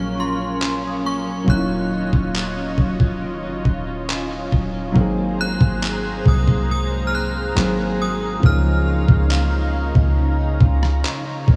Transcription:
Already playing: 808-style bass A#1, grand piano F#3 G#3 A#3 C#4 F4, clean electric guitar F#3 A#3 C#4 F4, analog synth pad C#4 A#4 C#5, celesta A#5, synth bell C#6
0.18 clean electric guitar F4, synth bell C6
0.39 clean electric guitar C#4
0.60 clean electric guitar F4, celesta G#5, clap
0.83 clean electric guitar C#4
0.87 celesta D#6
1.04 clean electric guitar A#3, synth bell C#6
1.26 clean electric guitar C#4
1.44 808-style bass D#1, clean electric guitar D#3, grand piano F#3 A#3, analog synth pad F4 D#5, kick
1.48 grand piano C#4 D#4, synth bell F#6
1.52 grand piano E4
1.59 grand piano F4
1.70 clean electric guitar C#4
1.91 clean electric guitar F4
2.13 808-style bass D#1, clean electric guitar C#4, kick
2.35 clean electric guitar F4, clap
2.57 clean electric guitar C#4
2.78 808-style bass C#1, clean electric guitar F#3, kick
3.00 clean electric guitar C#4, kick
3.22 clean electric guitar D#3
3.43 808-style bass F#1, clean electric guitar C#4
3.65 808-style bass D#1, clean electric guitar F4, kick
3.87 clean electric guitar C#4
4.08 clean electric guitar F4, celesta G#5, clap
4.30 clean electric guitar C#4
4.52 808-style bass D#1, clean electric guitar F#3, kick
4.74 clean electric guitar C#4
4.92 808-style bass G#1, clean electric guitar G#2, grand piano F#3 A#3, analog synth pad G#4 C5 A#5, kick
4.96 grand piano C4 D#4
5.00 grand piano G#4
5.17 clean electric guitar A#3
5.39 clean electric guitar C4, synth bell F#6
5.60 808-style bass G#1, clean electric guitar A#3, kick
5.82 clean electric guitar C4, clap
6.04 clean electric guitar A#3
6.26 808-style bass C2, clean electric guitar F#3, synth bell D#6, kick
6.48 clean electric guitar A#3, kick
6.70 clean electric guitar G#2, synth bell D#6
6.91 clean electric guitar A#3
7.07 synth bell F6
7.13 clean electric guitar C4, synth bell F#6
7.35 clean electric guitar A#3
7.55 808-style bass G#1, clean electric guitar G#2, grand piano F#3 A#3 C4 D#4, analog synth pad G#4, clap
7.59 grand piano G#4
7.78 clean electric guitar A#3
8.00 clean electric guitar F#3, synth bell D#6
8.21 clean electric guitar A#3
8.40 808-style bass C#2, clean electric guitar C#3, grand piano F3 A#3, analog synth pad D#4 C#5 F5 A#5, kick
8.44 grand piano C#4 D#4, synth bell F6
8.48 grand piano G#4
8.65 clean electric guitar D#4
8.87 clean electric guitar F4
9.08 808-style bass C#2, clean electric guitar D#4, kick
9.30 clean electric guitar F4, clap
9.52 clean electric guitar D#4
9.74 clean electric guitar A#3
9.95 808-style bass C#2, clean electric guitar D#4, kick
10.17 clean electric guitar C#3
10.39 clean electric guitar D#4
10.61 808-style bass C#2, clean electric guitar F4, kick
10.82 clean electric guitar D#4, cross-stick
11.04 clean electric guitar F4, clap
11.26 clean electric guitar D#4
11.47 808-style bass C#2, clean electric guitar A#3, celesta D#5, kick

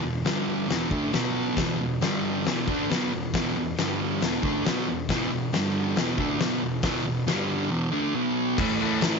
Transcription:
0.03 distorted electric guitar E2 B2
0.24 distorted electric guitar G2 D3 G3, snare, open hi-hat
0.69 distorted electric guitar E2 B2 E3, snare, open hi-hat
0.91 distorted electric guitar D3 A3 D4, kick
1.12 distorted electric guitar B2 F#3 B3, snare, open hi-hat
1.56 distorted electric guitar E2 B2 E3, kick, snare, open hi-hat
1.80 distorted electric guitar E2 B2
2.01 distorted electric guitar G2 D3 G3, snare, open hi-hat
2.45 distorted electric guitar E2 B2 E3, snare, open hi-hat
2.68 distorted electric guitar D3 A3 D4, kick
2.90 distorted electric guitar B2 F#3 B3, snare, open hi-hat
3.13 distorted electric guitar E2 B2
3.34 distorted electric guitar E2 B2 E3, kick, snare, open hi-hat
3.56 distorted electric guitar E2 B2
3.77 distorted electric guitar G2 D3 G3, snare, open hi-hat
4.21 distorted electric guitar E2 B2 E3, snare, open hi-hat
4.43 distorted electric guitar D3 A3 D4, kick
4.65 distorted electric guitar B2 F#3 B3, snare, open hi-hat
4.88 distorted electric guitar E2 B2
5.09 distorted electric guitar E2 B2 E3, kick, snare, open hi-hat
5.31 distorted electric guitar E2 B2
5.53 distorted electric guitar G2 D3 G3, snare, open hi-hat
5.96 distorted electric guitar E2 B2 E3, snare, open hi-hat
6.18 distorted electric guitar D3 A3 D4, kick
6.39 distorted electric guitar B2 F#3 B3, snare, open hi-hat
6.62 distorted electric guitar E2 B2
6.82 distorted electric guitar E2 B2 E3, kick, snare, open hi-hat
7.06 distorted electric guitar E2 B2
7.27 distorted electric guitar G2 D3 G3, snare, open hi-hat
7.70 distorted electric guitar E2 B2 E3
7.92 distorted electric guitar D3 A3 D4
8.14 distorted electric guitar B2 F#3 B3
8.58 distorted electric guitar A2 E3 A3, kick, crash
8.80 distorted electric guitar E3 A3
9.01 distorted electric guitar A2 E3, snare, open hi-hat
9.05 distorted electric guitar A3

